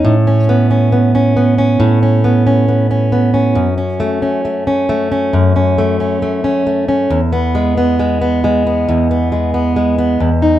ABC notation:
X:1
M:4/4
L:1/16
Q:1/4=68
K:E
V:1 name="Steel-string acoustic guitar"
A,, C B, C B, C B, C A,, C B, C B, C B, C | F,, C A, C A, C A, C F,, C A, C A, C A, C | E,, B, G, B, G, B, G, B, E,, B, G, B, G, B, E,, D |]